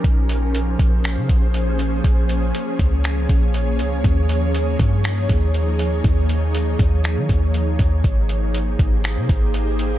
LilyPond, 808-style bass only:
\new Staff \with { instrumentName = "808-style bass" } { \clef bass \time 4/4 \key aes \major \tempo 4 = 120 bes,,4. bes,,8. des16 bes,,4. | bes,,4 r8 des,4 bes,,4 des,8 | ees,4. g,4 ees,4. | ees,4. ees,8. ees16 ees,4 ees,8 |
aes,,4. aes,,8. c16 aes,,4. | }